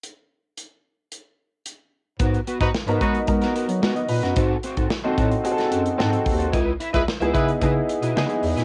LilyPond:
<<
  \new Staff \with { instrumentName = "Horn section" } { \time 4/4 \key gis \minor \tempo 4 = 111 r1 | r8. <dis' fis' b'>16 r8 <dis' fis' b'>8 r2 | r1 | r8. <e' gis' b'>16 r8 <e' gis' b'>8 r2 | }
  \new Staff \with { instrumentName = "Clean electric guitar" } { \time 4/4 \key gis \minor r1 | <b fis' ais'>16 r16 <b fis' b'>16 <b fis' ais'>16 r16 <b fis' b'>16 <b fis' ais'>16 r8 <b fis' ais'>16 <b fis' ais'>16 r16 <b fis' ais'>16 r8 <b fis' ais'>16 | <bis fis' a'>16 r16 <bis fis' bis'>16 <bis fis' a'>16 r16 <bis fis' bis'>16 <bis fis' a'>16 r8 <bis fis' a'>16 <bis fis' a'>16 r16 <bis fis' a'>16 r8 <bis fis' a'>16 | <e' b' dis''>16 r16 <e' b' e''>16 <e' b' dis''>16 r16 <e' b' e''>16 <e' b' dis''>16 r16 <e' b' dis''>16 r8 <e' b' dis''>16 <e' b' dis''>16 r8 <e' b' dis''>16 | }
  \new Staff \with { instrumentName = "Grand piano" } { \time 4/4 \key gis \minor r1 | r4 r16 <b dis' fis' ais'>8. <b dis' fis' ais'>4 r16 dis''16 b'16 fis'16~ | fis'16 r4 <bis dis' fis' a'>8. <bis dis' fis' gis' a'>4 <bis dis' fis' a'>4 | r4 r16 <b dis' e' gis'>8. <b dis' e' gis'>4 <b dis' e' gis'>4 | }
  \new Staff \with { instrumentName = "Bass clarinet" } { \clef bass \time 4/4 \key gis \minor r1 | gis,8 r16 gis,16 r16 gis,16 gis8 gis8 r16 fis16 gis16 r16 ais,16 fis,16 | gis,8 r16 gis,16 r8 a,8 r8 fis,8 gis,8 dis,8 | cis,8 r16 cis,16 r16 cis,16 cis8 cis8 r16 b,16 cis16 r16 e,16 ais,16 | }
  \new DrumStaff \with { instrumentName = "Drums" } \drummode { \time 4/4 hh4 hh4 hh4 hh4 | <hh bd>16 hh16 hh16 <hh bd>16 sn16 hh16 <hh bd>16 hh16 <hh bd>16 <hh sn>16 hh16 hh16 sn16 hh16 hho16 <hh sn>16 | <hh bd>8 hh16 <hh bd>16 sn8 <hh bd>16 hh16 hh16 <hh sn>16 hh16 hh16 sn16 hh16 <hho bd>16 hh16 | <hh bd>8 hh16 <hh bd>16 sn16 hh16 <hh bd>16 hh16 <hh bd>8 hh16 hh16 sn16 hh16 hho16 <hh sn>16 | }
>>